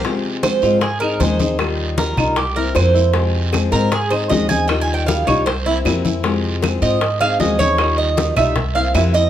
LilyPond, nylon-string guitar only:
\new Staff \with { instrumentName = "Nylon-string guitar" } { \time 4/4 \key f \minor \tempo 4 = 155 <c f aes c' f'>4 <f aes c' f'>8 <f aes c' f'>8 r8 <c' ees' aes'>8 <ees aes c' ees' aes'>8 <c' ees' aes'>8 | <ees g ees' f'>4 <ees g ees' f'>8 <g ees' f'>8 r8 <bes c' e'>8 <c e bes c' e'>8 <bes c' e'>8 | <c f aes c' f'>4 <f aes c' f'>8 <f aes c' f'>8 r8 <c' ees' aes'>8 <ees aes c' ees' aes'>8 <c' ees' aes'>8 | <ees g ees' f'>4 <ees g ees' f'>8 <g ees' f'>8 r8 <bes c' e'>8 <c e bes c' e'>8 <bes c' e'>8 |
<c f aes c' f'>4 <f aes c' f'>8 <f aes c' f'>8 r8 <c' ees' aes'>8 <ees aes c' ees' aes'>8 <c' ees' aes'>8 | <ees g ees' f'>4 <ees g ees' f'>8 <g ees' f'>8 r8 <bes c' e'>8 <c e bes c' e'>8 <bes c' e'>8 | }